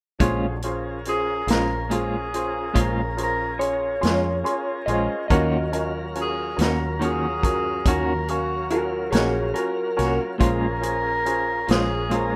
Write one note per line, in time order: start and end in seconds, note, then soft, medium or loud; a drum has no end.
0.19 1.44 A#1 medium
0.19 0.45 A#2 medium
0.19 0.62 D3 soft
0.19 0.62 F#3 medium
0.19 0.45 G#3 medium
0.19 0.62 A3 soft
0.19 0.62 C#4 soft
0.19 0.52 C#4 medium
0.19 0.46 C#4 medium
0.19 0.46 F4 medium
0.19 0.52 F4 medium
0.19 0.52 G#4 medium
0.19 0.52 C5 medium
0.19 kick medium
0.19 closed hi-hat medium
0.62 5.27 C#4 medium
0.62 0.95 C#4 medium
0.62 5.27 F4 medium
0.62 0.95 F4 soft
0.62 5.27 G#4 medium
0.62 0.95 G#4 soft
0.62 5.27 A#4 medium
0.62 0.95 C5 medium
0.62 closed hi-hat medium
1.05 1.38 C#4 soft
1.05 1.38 F4 soft
1.05 1.38 G#4 soft
1.05 1.48 G#4 medium
1.05 1.38 C5 soft
1.05 closed hi-hat medium
1.47 2.71 A#1 medium
1.47 1.74 G#3 soft
1.47 1.73 C#4 soft
1.47 1.80 C#4 soft
1.47 1.73 F4 soft
1.47 1.80 F4 soft
1.47 1.79 G#4 soft
1.47 1.97 A#4 medium
1.47 1.80 C5 soft
1.47 snare medium
1.47 closed hi-hat medium
1.89 2.15 A#2 soft
1.89 2.15 G#3 soft
1.89 2.16 C#4 medium
1.89 2.23 C#4 soft
1.89 2.22 F4 soft
1.89 2.16 F4 soft
1.89 2.23 G#4 soft
1.89 2.22 C5 medium
1.89 closed hi-hat medium
1.95 2.82 G#4 medium
2.34 2.65 C#4 soft
2.34 2.65 F4 soft
2.34 2.65 G#4 soft
2.34 2.66 C5 medium
2.34 closed hi-hat medium
2.74 3.99 A#1 medium
2.74 3.00 A#2 medium
2.74 3.00 G#3 medium
2.74 3.00 C#4 medium
2.74 3.07 C#4 soft
2.74 3.00 F4 medium
2.74 3.07 F4 soft
2.74 3.07 G#4 soft
2.74 3.07 C5 soft
2.74 kick medium
2.74 closed hi-hat medium
2.80 3.19 A#4 medium
3.17 3.49 C#4 soft
3.17 3.49 F4 soft
3.17 3.49 G#4 soft
3.17 3.49 C5 medium
3.17 closed hi-hat soft
3.23 3.62 A#4 medium
3.58 3.91 C#4 soft
3.58 3.91 F4 soft
3.58 3.91 G#4 soft
3.58 4.84 C#5 medium
3.58 3.92 C6 medium
3.58 closed hi-hat medium
4.01 4.42 F2 medium
4.01 4.29 G#3 soft
4.01 4.34 C#4 medium
4.01 4.28 C#4 soft
4.01 4.34 F4 soft
4.01 4.28 F4 soft
4.01 4.34 G#4 soft
4.01 4.34 C6 medium
4.01 closed hi-hat medium
4.05 snare medium
4.44 4.77 C#4 medium
4.44 4.77 F4 medium
4.44 4.77 G#4 soft
4.44 4.77 C6 medium
4.44 closed hi-hat medium
4.86 5.07 A#1 medium
4.86 5.14 G#3 soft
4.86 5.20 C#4 medium
4.86 5.14 C#4 soft
4.86 5.13 F4 soft
4.86 5.20 F4 medium
4.86 5.20 G#4 medium
4.86 5.20 C5 medium
4.86 5.27 D#5 medium
4.86 closed hi-hat soft
5.28 6.54 D#2 medium
5.28 5.56 D#3 medium
5.28 10.37 F#3 medium
5.28 5.56 A#3 medium
5.28 5.62 C#4 medium
5.28 5.56 C#4 medium
5.28 5.62 F4 medium
5.28 5.62 F#4 medium
5.28 5.62 A#4 medium
5.28 10.37 A#4 medium
5.28 5.91 D#5 medium
5.28 10.37 F5 medium
5.28 kick medium
5.28 closed hi-hat medium
5.32 10.37 C#4 medium
5.32 5.57 F#4 medium
5.72 6.04 C#4 medium
5.72 6.05 F4 soft
5.72 6.04 F#4 soft
5.72 6.05 A#4 medium
5.72 closed hi-hat medium
6.15 6.47 C#4 medium
6.15 6.47 F4 soft
6.15 6.47 F#4 soft
6.15 6.47 A#4 soft
6.15 closed hi-hat soft
6.21 6.60 G#4 medium
6.56 7.82 D#2 medium
6.56 6.89 C#4 soft
6.56 6.84 C#4 soft
6.56 6.89 F4 soft
6.56 6.89 F#4 soft
6.56 6.84 F#4 soft
6.56 6.89 A#4 soft
6.56 closed hi-hat medium
6.61 6.85 A#3 soft
6.61 7.05 A#4 medium
6.61 snare medium
7.00 7.25 D#3 medium
7.00 7.26 A#3 medium
7.00 7.26 C#4 medium
7.00 7.33 C#4 soft
7.00 7.33 F4 soft
7.00 7.33 F#4 soft
7.00 7.27 F#4 medium
7.00 7.33 A#4 medium
7.00 closed hi-hat soft
7.04 7.85 G#4 medium
7.42 7.75 C#4 medium
7.42 7.75 F4 soft
7.42 7.75 F#4 soft
7.42 7.75 A#4 medium
7.42 kick medium
7.42 closed hi-hat medium
7.86 9.09 D#2 medium
7.86 8.12 D#3 medium
7.86 8.12 A#3 medium
7.86 8.17 C#4 soft
7.86 8.12 C#4 medium
7.86 8.18 F4 soft
7.86 8.18 F#4 soft
7.86 8.12 F#4 medium
7.86 8.18 A#4 medium
7.86 8.31 A#4 medium
7.86 kick medium
7.86 closed hi-hat medium
8.28 8.61 C#4 soft
8.28 8.70 F#4 medium
8.28 8.61 F#4 soft
8.28 8.61 A#4 soft
8.28 8.61 F5 soft
8.28 closed hi-hat medium
8.70 9.03 C#4 soft
8.70 9.03 F4 soft
8.70 9.10 F#4 medium
8.70 9.02 F#4 soft
8.70 9.12 A#4 medium
8.70 9.03 A#4 medium
8.70 closed hi-hat medium
9.11 9.52 A#1 medium
9.11 9.39 A#3 soft
9.11 9.44 C#4 medium
9.11 9.39 C#4 soft
9.11 9.44 F4 soft
9.11 9.38 F#4 medium
9.11 9.45 F#4 medium
9.11 9.51 G#4 medium
9.11 9.44 A#4 medium
9.11 9.54 C#5 medium
9.11 closed hi-hat medium
9.15 snare medium
9.54 9.87 C#4 soft
9.54 9.87 F4 medium
9.54 9.87 F#4 medium
9.54 10.17 A#4 medium
9.54 9.87 A#4 medium
9.54 closed hi-hat medium
9.97 10.18 C2 medium
9.97 10.24 A#3 soft
9.97 10.29 C#4 medium
9.97 10.23 C#4 medium
9.97 10.29 F4 medium
9.97 10.29 F#4 medium
9.97 10.23 F#4 soft
9.97 10.29 A#4 medium
9.97 closed hi-hat medium
10.01 snare soft
10.38 11.64 A#1 medium
10.38 10.65 A#2 medium
10.38 10.66 G#3 medium
10.38 12.36 C#4 medium
10.38 10.72 C#4 soft
10.38 10.66 C#4 medium
10.38 12.36 F4 medium
10.38 10.72 F4 soft
10.38 10.66 F4 medium
10.38 12.36 G#4 medium
10.38 10.72 G#4 medium
10.38 12.36 A#4 medium
10.38 10.72 C5 medium
10.38 kick medium
10.38 closed hi-hat medium
10.43 11.72 A#4 medium
10.81 11.14 C#4 soft
10.81 11.14 F4 soft
10.81 11.14 G#4 soft
10.81 11.14 C5 soft
10.81 closed hi-hat medium
11.26 11.57 C#4 medium
11.26 11.58 F4 soft
11.26 11.58 G#4 soft
11.26 11.57 C5 medium
11.26 closed hi-hat medium
11.67 12.36 A#1 medium
11.67 11.94 G#3 soft
11.67 12.00 C#4 soft
11.67 11.93 C#4 soft
11.67 11.93 F4 soft
11.67 12.00 F4 soft
11.67 12.00 G#4 soft
11.67 12.15 G#4 medium
11.67 12.00 C5 medium
11.67 snare loud
11.67 closed hi-hat medium
12.09 12.35 A#2 medium
12.09 12.36 G#3 soft
12.09 12.36 C#4 medium
12.09 12.36 F4 soft
12.09 12.36 F4 medium
12.09 12.36 G#4 soft
12.09 12.36 C5 medium
12.09 closed hi-hat medium
12.14 12.36 A#4 medium